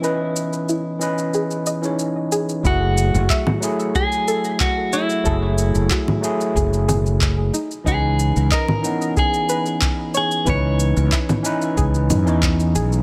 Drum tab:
SH |x-xxx-xxxxxxx-xx|x-xxx-xxxxxxx-xx|x-xxx-xxxxxxx-xx|x-xxx-xxxxxxx-xx|
CP |----------------|----x-------x---|----x-------x---|----x-------x---|
CG |----------------|-----O----------|-----O----O-----|-----O----------|
BD |----------------|o---o---o---o---|o---o---o---o---|o---o---o---o---|

SH |x-xxxxxxxxxxxxxx|
CP |----x-------x---|
CG |O----O----O-----|
BD |o---o---o---o---|